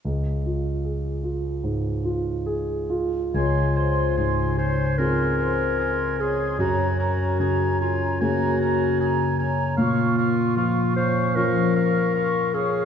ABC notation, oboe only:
X:1
M:4/4
L:1/8
Q:1/4=75
K:Db
V:1 name="Oboe"
z8 | a a a a a a a a | a a a a a a a a | f f f f f f f f |]